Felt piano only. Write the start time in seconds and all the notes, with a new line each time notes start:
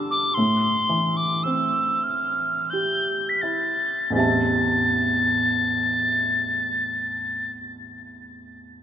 Already playing: G2 B3 D4 G4
0.37 A2
0.89 E3
1.45 C4
2.73 G4
3.43 E4
4.10 A1 E2 C4
4.16 G4 E5 A5